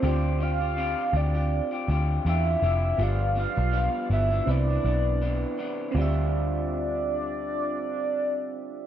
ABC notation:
X:1
M:4/4
L:1/16
Q:"Swing 16ths" 1/4=81
K:Ddor
V:1 name="Soft synth lead"
c2 f4 d4 z2 e4 | f2 f4 e2 d6 z2 | d16 |]
V:2 name="Synth keys"
[CFGd]16 | [B,FGd]8 [CEBd]8 | [CFGe]16 |]
V:3 name="Clean electric guitar"
[D,CFG]2 [D,CFG] [CFG] [D,CFG]2 [D,CFG] [CFG]2 [CFG] [D,CFG]2 [D,CFG]2 [D,CFG]2 | [G,,F,B,D]2 [G,,F,B,D] [F,B,D] [G,,F,B,D]2 [G,,F,B,D] [F,B,D] [C,E,B,D] [E,B,D] [E,B,D]2 [E,B,D]2 [C,E,B,D]2 | [D,G,CF]16 |]
V:4 name="Picked electric bass" clef=bass
D,,4- D,, z D,,3 z D,,2 E,,2 F,,,2 | G,,,3 B,,,2 z G,,,2 C,,2 B,,,4 z2 | D,,16 |]